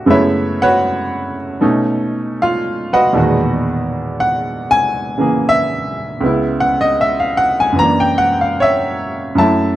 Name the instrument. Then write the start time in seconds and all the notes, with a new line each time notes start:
grand piano
Already playing: F#4 D5 E5
0.06 F#2 C#3 G#3 A3 B3 E4
0.10 E4 B4 C#5 E5
0.62 F#4 B4 C#5 F#5
1.61 B2 A3 C#4 D#4
2.42 F4 F5
2.93 F#4 B4 D#5 F#5
3.13 E2 B2 D#3 G#3
3.17 A#2 F#4
4.20 F#5
4.71 G#5
5.18 C#3 E3 A#3 G#4
5.49 E5
6.21 C#2 C#3 B3
6.26 E4
6.60 F#5
6.81 D#5
7.01 E5
7.20 F5
7.37 F#5
7.60 G#5
7.72 F#2 E3
7.79 A#3 A#5
7.83 D4
8.00 G5
8.18 F#5
8.41 F5
8.60 C#5 E5
9.35 F#2 F#3 A3 E5 A5
9.40 E4